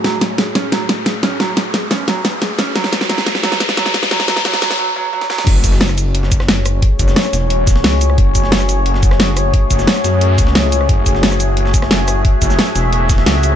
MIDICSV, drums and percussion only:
0, 0, Header, 1, 2, 480
1, 0, Start_track
1, 0, Key_signature, 3, "minor"
1, 0, Tempo, 338983
1, 62, Time_signature, 4, 2, 24, 8
1, 19195, End_track
2, 0, Start_track
2, 0, Title_t, "Drums"
2, 63, Note_on_c, 9, 38, 73
2, 63, Note_on_c, 9, 42, 74
2, 204, Note_off_c, 9, 38, 0
2, 204, Note_off_c, 9, 42, 0
2, 303, Note_on_c, 9, 38, 73
2, 303, Note_on_c, 9, 42, 86
2, 445, Note_off_c, 9, 38, 0
2, 445, Note_off_c, 9, 42, 0
2, 542, Note_on_c, 9, 38, 79
2, 542, Note_on_c, 9, 42, 79
2, 684, Note_off_c, 9, 38, 0
2, 684, Note_off_c, 9, 42, 0
2, 782, Note_on_c, 9, 38, 77
2, 782, Note_on_c, 9, 42, 92
2, 924, Note_off_c, 9, 38, 0
2, 924, Note_off_c, 9, 42, 0
2, 1022, Note_on_c, 9, 38, 82
2, 1022, Note_on_c, 9, 42, 82
2, 1164, Note_off_c, 9, 38, 0
2, 1164, Note_off_c, 9, 42, 0
2, 1262, Note_on_c, 9, 38, 78
2, 1262, Note_on_c, 9, 42, 90
2, 1404, Note_off_c, 9, 38, 0
2, 1404, Note_off_c, 9, 42, 0
2, 1501, Note_on_c, 9, 38, 80
2, 1501, Note_on_c, 9, 42, 76
2, 1643, Note_off_c, 9, 38, 0
2, 1643, Note_off_c, 9, 42, 0
2, 1742, Note_on_c, 9, 38, 81
2, 1742, Note_on_c, 9, 42, 90
2, 1883, Note_off_c, 9, 38, 0
2, 1883, Note_off_c, 9, 42, 0
2, 1982, Note_on_c, 9, 38, 78
2, 1982, Note_on_c, 9, 42, 76
2, 2124, Note_off_c, 9, 38, 0
2, 2124, Note_off_c, 9, 42, 0
2, 2222, Note_on_c, 9, 38, 81
2, 2222, Note_on_c, 9, 42, 93
2, 2364, Note_off_c, 9, 38, 0
2, 2364, Note_off_c, 9, 42, 0
2, 2462, Note_on_c, 9, 38, 87
2, 2462, Note_on_c, 9, 42, 78
2, 2604, Note_off_c, 9, 38, 0
2, 2604, Note_off_c, 9, 42, 0
2, 2702, Note_on_c, 9, 38, 90
2, 2702, Note_on_c, 9, 42, 92
2, 2843, Note_off_c, 9, 38, 0
2, 2843, Note_off_c, 9, 42, 0
2, 2942, Note_on_c, 9, 38, 92
2, 2942, Note_on_c, 9, 42, 86
2, 3084, Note_off_c, 9, 38, 0
2, 3084, Note_off_c, 9, 42, 0
2, 3182, Note_on_c, 9, 38, 90
2, 3182, Note_on_c, 9, 42, 95
2, 3323, Note_off_c, 9, 38, 0
2, 3323, Note_off_c, 9, 42, 0
2, 3422, Note_on_c, 9, 38, 92
2, 3422, Note_on_c, 9, 42, 79
2, 3564, Note_off_c, 9, 38, 0
2, 3564, Note_off_c, 9, 42, 0
2, 3661, Note_on_c, 9, 38, 92
2, 3661, Note_on_c, 9, 42, 92
2, 3803, Note_off_c, 9, 38, 0
2, 3803, Note_off_c, 9, 42, 0
2, 3902, Note_on_c, 9, 38, 88
2, 3902, Note_on_c, 9, 42, 80
2, 4022, Note_off_c, 9, 38, 0
2, 4022, Note_on_c, 9, 38, 82
2, 4043, Note_off_c, 9, 42, 0
2, 4142, Note_off_c, 9, 38, 0
2, 4142, Note_on_c, 9, 38, 92
2, 4142, Note_on_c, 9, 42, 95
2, 4263, Note_off_c, 9, 38, 0
2, 4263, Note_on_c, 9, 38, 83
2, 4284, Note_off_c, 9, 42, 0
2, 4382, Note_off_c, 9, 38, 0
2, 4382, Note_on_c, 9, 38, 97
2, 4382, Note_on_c, 9, 42, 83
2, 4502, Note_off_c, 9, 38, 0
2, 4502, Note_on_c, 9, 38, 84
2, 4524, Note_off_c, 9, 42, 0
2, 4623, Note_off_c, 9, 38, 0
2, 4623, Note_on_c, 9, 38, 100
2, 4623, Note_on_c, 9, 42, 98
2, 4743, Note_off_c, 9, 38, 0
2, 4743, Note_on_c, 9, 38, 83
2, 4764, Note_off_c, 9, 42, 0
2, 4863, Note_off_c, 9, 38, 0
2, 4863, Note_on_c, 9, 38, 103
2, 4863, Note_on_c, 9, 42, 87
2, 4983, Note_off_c, 9, 38, 0
2, 4983, Note_on_c, 9, 38, 86
2, 5005, Note_off_c, 9, 42, 0
2, 5103, Note_off_c, 9, 38, 0
2, 5103, Note_on_c, 9, 38, 99
2, 5103, Note_on_c, 9, 42, 93
2, 5223, Note_off_c, 9, 38, 0
2, 5223, Note_on_c, 9, 38, 89
2, 5244, Note_off_c, 9, 42, 0
2, 5343, Note_off_c, 9, 38, 0
2, 5343, Note_on_c, 9, 38, 96
2, 5343, Note_on_c, 9, 42, 84
2, 5462, Note_off_c, 9, 38, 0
2, 5462, Note_on_c, 9, 38, 88
2, 5485, Note_off_c, 9, 42, 0
2, 5582, Note_off_c, 9, 38, 0
2, 5582, Note_on_c, 9, 38, 98
2, 5582, Note_on_c, 9, 42, 97
2, 5703, Note_off_c, 9, 38, 0
2, 5703, Note_on_c, 9, 38, 92
2, 5724, Note_off_c, 9, 42, 0
2, 5822, Note_off_c, 9, 38, 0
2, 5822, Note_on_c, 9, 38, 98
2, 5822, Note_on_c, 9, 42, 81
2, 5943, Note_off_c, 9, 38, 0
2, 5943, Note_on_c, 9, 38, 85
2, 5964, Note_off_c, 9, 42, 0
2, 6062, Note_off_c, 9, 38, 0
2, 6062, Note_on_c, 9, 38, 101
2, 6062, Note_on_c, 9, 42, 99
2, 6181, Note_off_c, 9, 38, 0
2, 6181, Note_on_c, 9, 38, 91
2, 6203, Note_off_c, 9, 42, 0
2, 6301, Note_off_c, 9, 38, 0
2, 6301, Note_on_c, 9, 38, 102
2, 6301, Note_on_c, 9, 42, 84
2, 6421, Note_off_c, 9, 38, 0
2, 6421, Note_on_c, 9, 38, 95
2, 6443, Note_off_c, 9, 42, 0
2, 6542, Note_off_c, 9, 38, 0
2, 6542, Note_on_c, 9, 38, 106
2, 6542, Note_on_c, 9, 42, 99
2, 6662, Note_off_c, 9, 38, 0
2, 6662, Note_on_c, 9, 38, 96
2, 6683, Note_off_c, 9, 42, 0
2, 6804, Note_off_c, 9, 38, 0
2, 7383, Note_on_c, 9, 38, 55
2, 7503, Note_off_c, 9, 38, 0
2, 7503, Note_on_c, 9, 38, 80
2, 7623, Note_off_c, 9, 38, 0
2, 7623, Note_on_c, 9, 38, 82
2, 7743, Note_on_c, 9, 36, 127
2, 7743, Note_on_c, 9, 42, 81
2, 7743, Note_on_c, 9, 49, 101
2, 7765, Note_off_c, 9, 38, 0
2, 7884, Note_off_c, 9, 36, 0
2, 7885, Note_off_c, 9, 42, 0
2, 7885, Note_off_c, 9, 49, 0
2, 7983, Note_on_c, 9, 36, 64
2, 7983, Note_on_c, 9, 42, 93
2, 7983, Note_on_c, 9, 82, 59
2, 8103, Note_on_c, 9, 38, 38
2, 8124, Note_off_c, 9, 36, 0
2, 8125, Note_off_c, 9, 42, 0
2, 8125, Note_off_c, 9, 82, 0
2, 8222, Note_off_c, 9, 38, 0
2, 8222, Note_on_c, 9, 38, 119
2, 8222, Note_on_c, 9, 42, 87
2, 8223, Note_off_c, 9, 38, 0
2, 8223, Note_off_c, 9, 42, 0
2, 8223, Note_on_c, 9, 38, 121
2, 8223, Note_on_c, 9, 42, 82
2, 8343, Note_on_c, 9, 37, 37
2, 8343, Note_on_c, 9, 82, 27
2, 8364, Note_off_c, 9, 38, 0
2, 8364, Note_off_c, 9, 42, 0
2, 8463, Note_off_c, 9, 82, 0
2, 8463, Note_on_c, 9, 42, 104
2, 8463, Note_on_c, 9, 82, 62
2, 8485, Note_off_c, 9, 37, 0
2, 8605, Note_off_c, 9, 42, 0
2, 8605, Note_off_c, 9, 82, 0
2, 8702, Note_on_c, 9, 42, 84
2, 8703, Note_off_c, 9, 42, 0
2, 8703, Note_on_c, 9, 42, 88
2, 8823, Note_on_c, 9, 38, 41
2, 8844, Note_off_c, 9, 42, 0
2, 8943, Note_on_c, 9, 36, 107
2, 8943, Note_on_c, 9, 42, 71
2, 8944, Note_off_c, 9, 42, 0
2, 8944, Note_on_c, 9, 42, 99
2, 8944, Note_on_c, 9, 82, 62
2, 8964, Note_off_c, 9, 38, 0
2, 9063, Note_on_c, 9, 37, 50
2, 9063, Note_on_c, 9, 38, 46
2, 9084, Note_off_c, 9, 36, 0
2, 9085, Note_off_c, 9, 42, 0
2, 9085, Note_off_c, 9, 82, 0
2, 9182, Note_off_c, 9, 38, 0
2, 9182, Note_on_c, 9, 38, 121
2, 9182, Note_on_c, 9, 42, 92
2, 9183, Note_off_c, 9, 38, 0
2, 9183, Note_off_c, 9, 42, 0
2, 9183, Note_on_c, 9, 38, 123
2, 9183, Note_on_c, 9, 42, 82
2, 9205, Note_off_c, 9, 37, 0
2, 9325, Note_off_c, 9, 38, 0
2, 9325, Note_off_c, 9, 42, 0
2, 9422, Note_on_c, 9, 42, 67
2, 9424, Note_off_c, 9, 42, 0
2, 9424, Note_on_c, 9, 37, 49
2, 9424, Note_on_c, 9, 42, 98
2, 9424, Note_on_c, 9, 82, 60
2, 9566, Note_off_c, 9, 37, 0
2, 9566, Note_off_c, 9, 42, 0
2, 9566, Note_off_c, 9, 82, 0
2, 9662, Note_on_c, 9, 42, 90
2, 9663, Note_on_c, 9, 36, 125
2, 9664, Note_off_c, 9, 42, 0
2, 9664, Note_on_c, 9, 42, 78
2, 9805, Note_off_c, 9, 36, 0
2, 9806, Note_off_c, 9, 42, 0
2, 9902, Note_on_c, 9, 42, 74
2, 9903, Note_on_c, 9, 36, 63
2, 9905, Note_off_c, 9, 42, 0
2, 9905, Note_on_c, 9, 42, 96
2, 9905, Note_on_c, 9, 82, 58
2, 10022, Note_on_c, 9, 38, 42
2, 10024, Note_off_c, 9, 82, 0
2, 10024, Note_on_c, 9, 82, 27
2, 10045, Note_off_c, 9, 36, 0
2, 10046, Note_off_c, 9, 42, 0
2, 10142, Note_off_c, 9, 38, 0
2, 10142, Note_on_c, 9, 38, 120
2, 10142, Note_on_c, 9, 42, 94
2, 10144, Note_off_c, 9, 38, 0
2, 10144, Note_off_c, 9, 42, 0
2, 10144, Note_on_c, 9, 38, 124
2, 10144, Note_on_c, 9, 42, 79
2, 10166, Note_off_c, 9, 82, 0
2, 10263, Note_off_c, 9, 42, 0
2, 10263, Note_on_c, 9, 37, 39
2, 10263, Note_on_c, 9, 42, 44
2, 10263, Note_on_c, 9, 82, 27
2, 10285, Note_off_c, 9, 38, 0
2, 10383, Note_off_c, 9, 42, 0
2, 10383, Note_on_c, 9, 38, 45
2, 10383, Note_on_c, 9, 42, 68
2, 10384, Note_off_c, 9, 42, 0
2, 10384, Note_off_c, 9, 82, 0
2, 10384, Note_on_c, 9, 42, 96
2, 10384, Note_on_c, 9, 82, 61
2, 10405, Note_off_c, 9, 37, 0
2, 10525, Note_off_c, 9, 38, 0
2, 10526, Note_off_c, 9, 42, 0
2, 10526, Note_off_c, 9, 82, 0
2, 10623, Note_on_c, 9, 42, 87
2, 10624, Note_off_c, 9, 42, 0
2, 10624, Note_on_c, 9, 42, 86
2, 10766, Note_off_c, 9, 42, 0
2, 10863, Note_on_c, 9, 36, 112
2, 10863, Note_on_c, 9, 38, 43
2, 10863, Note_on_c, 9, 42, 95
2, 10863, Note_on_c, 9, 82, 59
2, 10983, Note_off_c, 9, 38, 0
2, 10983, Note_on_c, 9, 38, 53
2, 11005, Note_off_c, 9, 36, 0
2, 11005, Note_off_c, 9, 42, 0
2, 11005, Note_off_c, 9, 82, 0
2, 11103, Note_off_c, 9, 38, 0
2, 11103, Note_on_c, 9, 38, 120
2, 11103, Note_on_c, 9, 46, 88
2, 11104, Note_off_c, 9, 38, 0
2, 11104, Note_on_c, 9, 38, 125
2, 11104, Note_on_c, 9, 42, 81
2, 11245, Note_off_c, 9, 46, 0
2, 11246, Note_off_c, 9, 38, 0
2, 11246, Note_off_c, 9, 42, 0
2, 11343, Note_on_c, 9, 42, 67
2, 11344, Note_off_c, 9, 42, 0
2, 11344, Note_on_c, 9, 42, 94
2, 11344, Note_on_c, 9, 82, 57
2, 11464, Note_on_c, 9, 37, 35
2, 11486, Note_off_c, 9, 42, 0
2, 11486, Note_off_c, 9, 82, 0
2, 11583, Note_on_c, 9, 36, 127
2, 11583, Note_on_c, 9, 42, 87
2, 11584, Note_off_c, 9, 42, 0
2, 11584, Note_on_c, 9, 42, 77
2, 11606, Note_off_c, 9, 37, 0
2, 11725, Note_off_c, 9, 36, 0
2, 11725, Note_off_c, 9, 42, 0
2, 11823, Note_on_c, 9, 36, 66
2, 11823, Note_on_c, 9, 42, 92
2, 11823, Note_on_c, 9, 82, 58
2, 11824, Note_off_c, 9, 42, 0
2, 11824, Note_on_c, 9, 42, 74
2, 11944, Note_on_c, 9, 38, 39
2, 11965, Note_off_c, 9, 36, 0
2, 11965, Note_off_c, 9, 42, 0
2, 11965, Note_off_c, 9, 82, 0
2, 12063, Note_off_c, 9, 38, 0
2, 12063, Note_on_c, 9, 38, 120
2, 12063, Note_on_c, 9, 42, 88
2, 12183, Note_on_c, 9, 37, 36
2, 12183, Note_on_c, 9, 82, 27
2, 12205, Note_off_c, 9, 38, 0
2, 12205, Note_off_c, 9, 42, 0
2, 12303, Note_off_c, 9, 82, 0
2, 12303, Note_on_c, 9, 42, 70
2, 12303, Note_on_c, 9, 82, 58
2, 12324, Note_off_c, 9, 37, 0
2, 12445, Note_off_c, 9, 42, 0
2, 12445, Note_off_c, 9, 82, 0
2, 12543, Note_on_c, 9, 42, 87
2, 12544, Note_off_c, 9, 42, 0
2, 12544, Note_on_c, 9, 42, 83
2, 12662, Note_on_c, 9, 38, 41
2, 12686, Note_off_c, 9, 42, 0
2, 12782, Note_on_c, 9, 42, 71
2, 12783, Note_on_c, 9, 36, 113
2, 12784, Note_off_c, 9, 42, 0
2, 12784, Note_on_c, 9, 42, 92
2, 12784, Note_on_c, 9, 82, 57
2, 12803, Note_off_c, 9, 38, 0
2, 12902, Note_on_c, 9, 38, 46
2, 12904, Note_on_c, 9, 37, 49
2, 12925, Note_off_c, 9, 36, 0
2, 12926, Note_off_c, 9, 42, 0
2, 12926, Note_off_c, 9, 82, 0
2, 13022, Note_off_c, 9, 38, 0
2, 13022, Note_on_c, 9, 38, 123
2, 13022, Note_on_c, 9, 42, 94
2, 13024, Note_off_c, 9, 38, 0
2, 13024, Note_off_c, 9, 42, 0
2, 13024, Note_on_c, 9, 38, 126
2, 13024, Note_on_c, 9, 42, 79
2, 13045, Note_off_c, 9, 37, 0
2, 13166, Note_off_c, 9, 38, 0
2, 13166, Note_off_c, 9, 42, 0
2, 13262, Note_on_c, 9, 42, 68
2, 13263, Note_off_c, 9, 42, 0
2, 13263, Note_on_c, 9, 37, 49
2, 13263, Note_on_c, 9, 42, 89
2, 13263, Note_on_c, 9, 82, 57
2, 13405, Note_off_c, 9, 37, 0
2, 13405, Note_off_c, 9, 42, 0
2, 13405, Note_off_c, 9, 82, 0
2, 13502, Note_on_c, 9, 42, 87
2, 13503, Note_off_c, 9, 42, 0
2, 13503, Note_on_c, 9, 36, 127
2, 13503, Note_on_c, 9, 42, 73
2, 13644, Note_off_c, 9, 36, 0
2, 13645, Note_off_c, 9, 42, 0
2, 13743, Note_on_c, 9, 36, 62
2, 13743, Note_on_c, 9, 42, 86
2, 13743, Note_on_c, 9, 82, 57
2, 13862, Note_on_c, 9, 38, 41
2, 13863, Note_off_c, 9, 82, 0
2, 13863, Note_on_c, 9, 82, 27
2, 13884, Note_off_c, 9, 36, 0
2, 13884, Note_off_c, 9, 42, 0
2, 13981, Note_off_c, 9, 38, 0
2, 13981, Note_on_c, 9, 38, 119
2, 13981, Note_on_c, 9, 42, 90
2, 13982, Note_off_c, 9, 38, 0
2, 13982, Note_off_c, 9, 42, 0
2, 13982, Note_on_c, 9, 38, 126
2, 13982, Note_on_c, 9, 42, 78
2, 14004, Note_off_c, 9, 82, 0
2, 14102, Note_off_c, 9, 42, 0
2, 14102, Note_on_c, 9, 42, 44
2, 14103, Note_on_c, 9, 37, 35
2, 14103, Note_on_c, 9, 82, 27
2, 14124, Note_off_c, 9, 38, 0
2, 14221, Note_off_c, 9, 42, 0
2, 14221, Note_on_c, 9, 38, 44
2, 14221, Note_on_c, 9, 42, 69
2, 14223, Note_off_c, 9, 42, 0
2, 14223, Note_off_c, 9, 82, 0
2, 14223, Note_on_c, 9, 42, 89
2, 14223, Note_on_c, 9, 82, 59
2, 14245, Note_off_c, 9, 37, 0
2, 14362, Note_off_c, 9, 38, 0
2, 14364, Note_off_c, 9, 42, 0
2, 14364, Note_off_c, 9, 82, 0
2, 14461, Note_on_c, 9, 42, 89
2, 14463, Note_off_c, 9, 42, 0
2, 14463, Note_on_c, 9, 42, 80
2, 14604, Note_off_c, 9, 42, 0
2, 14701, Note_on_c, 9, 38, 44
2, 14701, Note_on_c, 9, 42, 68
2, 14702, Note_on_c, 9, 36, 112
2, 14703, Note_off_c, 9, 42, 0
2, 14703, Note_on_c, 9, 42, 89
2, 14703, Note_on_c, 9, 82, 59
2, 14821, Note_off_c, 9, 38, 0
2, 14821, Note_on_c, 9, 38, 53
2, 14844, Note_off_c, 9, 36, 0
2, 14844, Note_off_c, 9, 42, 0
2, 14844, Note_off_c, 9, 82, 0
2, 14941, Note_off_c, 9, 38, 0
2, 14941, Note_on_c, 9, 38, 120
2, 14941, Note_on_c, 9, 46, 84
2, 14943, Note_off_c, 9, 38, 0
2, 14943, Note_on_c, 9, 38, 124
2, 14943, Note_on_c, 9, 42, 78
2, 15083, Note_off_c, 9, 46, 0
2, 15085, Note_off_c, 9, 38, 0
2, 15085, Note_off_c, 9, 42, 0
2, 15182, Note_on_c, 9, 42, 68
2, 15183, Note_off_c, 9, 42, 0
2, 15183, Note_on_c, 9, 42, 90
2, 15183, Note_on_c, 9, 82, 59
2, 15303, Note_on_c, 9, 37, 34
2, 15324, Note_off_c, 9, 42, 0
2, 15324, Note_off_c, 9, 82, 0
2, 15422, Note_on_c, 9, 36, 123
2, 15422, Note_on_c, 9, 42, 88
2, 15423, Note_off_c, 9, 42, 0
2, 15423, Note_on_c, 9, 42, 73
2, 15445, Note_off_c, 9, 37, 0
2, 15564, Note_off_c, 9, 36, 0
2, 15564, Note_off_c, 9, 42, 0
2, 15662, Note_on_c, 9, 36, 61
2, 15663, Note_on_c, 9, 42, 87
2, 15663, Note_on_c, 9, 82, 60
2, 15782, Note_on_c, 9, 38, 39
2, 15804, Note_off_c, 9, 36, 0
2, 15805, Note_off_c, 9, 42, 0
2, 15805, Note_off_c, 9, 82, 0
2, 15901, Note_off_c, 9, 38, 0
2, 15901, Note_on_c, 9, 38, 119
2, 15901, Note_on_c, 9, 42, 93
2, 15903, Note_off_c, 9, 38, 0
2, 15903, Note_off_c, 9, 42, 0
2, 15903, Note_on_c, 9, 38, 117
2, 15903, Note_on_c, 9, 42, 78
2, 16023, Note_on_c, 9, 37, 34
2, 16023, Note_on_c, 9, 82, 29
2, 16044, Note_off_c, 9, 38, 0
2, 16044, Note_off_c, 9, 42, 0
2, 16141, Note_on_c, 9, 42, 71
2, 16143, Note_off_c, 9, 42, 0
2, 16143, Note_off_c, 9, 82, 0
2, 16143, Note_on_c, 9, 42, 91
2, 16143, Note_on_c, 9, 82, 63
2, 16164, Note_off_c, 9, 37, 0
2, 16284, Note_off_c, 9, 42, 0
2, 16284, Note_off_c, 9, 82, 0
2, 16382, Note_on_c, 9, 42, 80
2, 16502, Note_on_c, 9, 38, 42
2, 16524, Note_off_c, 9, 42, 0
2, 16622, Note_on_c, 9, 36, 109
2, 16622, Note_on_c, 9, 42, 68
2, 16622, Note_on_c, 9, 82, 60
2, 16644, Note_off_c, 9, 38, 0
2, 16742, Note_on_c, 9, 37, 45
2, 16743, Note_on_c, 9, 38, 45
2, 16764, Note_off_c, 9, 36, 0
2, 16764, Note_off_c, 9, 42, 0
2, 16764, Note_off_c, 9, 82, 0
2, 16861, Note_off_c, 9, 38, 0
2, 16861, Note_on_c, 9, 38, 122
2, 16861, Note_on_c, 9, 42, 77
2, 16862, Note_off_c, 9, 38, 0
2, 16862, Note_off_c, 9, 42, 0
2, 16862, Note_on_c, 9, 38, 126
2, 16862, Note_on_c, 9, 42, 92
2, 16883, Note_off_c, 9, 37, 0
2, 17003, Note_off_c, 9, 38, 0
2, 17003, Note_off_c, 9, 42, 0
2, 17102, Note_on_c, 9, 37, 45
2, 17102, Note_on_c, 9, 42, 88
2, 17102, Note_on_c, 9, 82, 60
2, 17103, Note_off_c, 9, 42, 0
2, 17103, Note_on_c, 9, 42, 69
2, 17243, Note_off_c, 9, 37, 0
2, 17243, Note_off_c, 9, 82, 0
2, 17244, Note_off_c, 9, 42, 0
2, 17342, Note_on_c, 9, 36, 123
2, 17342, Note_on_c, 9, 42, 78
2, 17343, Note_off_c, 9, 42, 0
2, 17343, Note_on_c, 9, 42, 88
2, 17484, Note_off_c, 9, 36, 0
2, 17484, Note_off_c, 9, 42, 0
2, 17582, Note_on_c, 9, 42, 93
2, 17582, Note_on_c, 9, 82, 61
2, 17583, Note_off_c, 9, 42, 0
2, 17583, Note_on_c, 9, 36, 59
2, 17583, Note_on_c, 9, 42, 74
2, 17702, Note_off_c, 9, 82, 0
2, 17702, Note_on_c, 9, 82, 28
2, 17703, Note_on_c, 9, 38, 41
2, 17724, Note_off_c, 9, 36, 0
2, 17725, Note_off_c, 9, 42, 0
2, 17822, Note_off_c, 9, 38, 0
2, 17822, Note_on_c, 9, 38, 120
2, 17822, Note_on_c, 9, 42, 90
2, 17844, Note_off_c, 9, 82, 0
2, 17942, Note_on_c, 9, 37, 34
2, 17942, Note_on_c, 9, 82, 29
2, 17943, Note_off_c, 9, 42, 0
2, 17943, Note_on_c, 9, 42, 45
2, 17964, Note_off_c, 9, 38, 0
2, 18062, Note_off_c, 9, 42, 0
2, 18062, Note_off_c, 9, 82, 0
2, 18062, Note_on_c, 9, 38, 44
2, 18062, Note_on_c, 9, 42, 69
2, 18062, Note_on_c, 9, 82, 64
2, 18084, Note_off_c, 9, 37, 0
2, 18204, Note_off_c, 9, 38, 0
2, 18204, Note_off_c, 9, 42, 0
2, 18204, Note_off_c, 9, 82, 0
2, 18303, Note_on_c, 9, 42, 88
2, 18445, Note_off_c, 9, 42, 0
2, 18542, Note_on_c, 9, 42, 95
2, 18542, Note_on_c, 9, 82, 63
2, 18543, Note_on_c, 9, 36, 100
2, 18544, Note_off_c, 9, 42, 0
2, 18544, Note_on_c, 9, 38, 42
2, 18544, Note_on_c, 9, 42, 67
2, 18664, Note_off_c, 9, 38, 0
2, 18664, Note_on_c, 9, 38, 52
2, 18684, Note_off_c, 9, 82, 0
2, 18685, Note_off_c, 9, 36, 0
2, 18686, Note_off_c, 9, 42, 0
2, 18782, Note_off_c, 9, 38, 0
2, 18782, Note_on_c, 9, 38, 115
2, 18782, Note_on_c, 9, 42, 80
2, 18784, Note_off_c, 9, 38, 0
2, 18784, Note_on_c, 9, 38, 125
2, 18784, Note_on_c, 9, 46, 83
2, 18924, Note_off_c, 9, 42, 0
2, 18925, Note_off_c, 9, 38, 0
2, 18925, Note_off_c, 9, 46, 0
2, 19023, Note_on_c, 9, 42, 94
2, 19023, Note_on_c, 9, 82, 61
2, 19024, Note_off_c, 9, 42, 0
2, 19024, Note_on_c, 9, 42, 67
2, 19143, Note_on_c, 9, 37, 31
2, 19165, Note_off_c, 9, 42, 0
2, 19165, Note_off_c, 9, 82, 0
2, 19195, Note_off_c, 9, 37, 0
2, 19195, End_track
0, 0, End_of_file